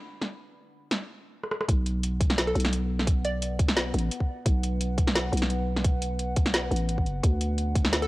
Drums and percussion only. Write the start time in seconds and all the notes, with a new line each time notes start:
0.22 snare
0.91 snare
1.43 cross-stick
1.51 cross-stick
1.61 cross-stick
1.69 kick, closed hi-hat
1.86 closed hi-hat
2.03 closed hi-hat
2.21 kick, closed hi-hat
2.30 snare
2.38 snare, closed hi-hat
2.55 closed hi-hat
2.60 closed hi-hat
2.65 snare
2.73 closed hi-hat
2.99 snare
3.07 kick, closed hi-hat
3.25 closed hi-hat
3.42 closed hi-hat
3.59 kick, closed hi-hat
3.68 snare
3.77 snare, closed hi-hat
3.94 closed hi-hat
3.98 closed hi-hat
4.11 closed hi-hat
4.20 kick
4.46 kick, closed hi-hat
4.63 closed hi-hat
4.81 closed hi-hat
4.98 kick, closed hi-hat
5.07 snare
5.15 snare, closed hi-hat
5.33 closed hi-hat
5.37 closed hi-hat
5.42 snare
5.50 closed hi-hat
5.76 snare
5.84 kick, closed hi-hat
6.02 closed hi-hat
6.19 closed hi-hat
6.36 kick, closed hi-hat
6.46 snare
6.54 snare, closed hi-hat
6.72 closed hi-hat
6.76 closed hi-hat
6.89 closed hi-hat
6.98 kick
7.06 closed hi-hat
7.23 kick, closed hi-hat
7.41 closed hi-hat
7.58 closed hi-hat
7.75 kick, closed hi-hat
7.85 snare
7.93 snare, closed hi-hat